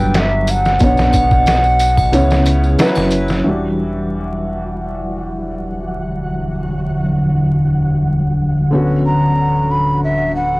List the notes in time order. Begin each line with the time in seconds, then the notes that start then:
Already playing: G1 F#3 G3 D4 B4 G5
0.14 snare, closed hi-hat, tambourine
0.18 E5
0.47 F#5, closed hi-hat, tambourine
0.65 snare, tambourine
0.79 B1 B2 B3 D4, kick, closed hi-hat, tambourine
0.84 C#5 F#5
0.97 snare, tambourine
1.13 kick, closed hi-hat, tambourine, triangle
1.31 kick, tambourine
1.46 snare, closed hi-hat, tambourine
1.64 tambourine
1.79 closed hi-hat, tambourine
1.98 kick, tambourine, triangle
2.12 C#2 C#3 B3 E4 C#5, closed hi-hat, tambourine
2.31 snare, tambourine
2.46 closed hi-hat, tambourine
2.64 tambourine
2.79 F#3 C#4 E4 B4, snare, closed hi-hat, tambourine
2.95 F#1, snare, tambourine, triangle
3.11 closed hi-hat, tambourine
3.28 snare, tambourine
3.44 E1 D3 E3 F#3 G3 D4 F#4 F#5
8.71 D1 D3 B3 C#4 F#4
9.06 A#5
9.71 B5
10.04 E5
10.36 F#5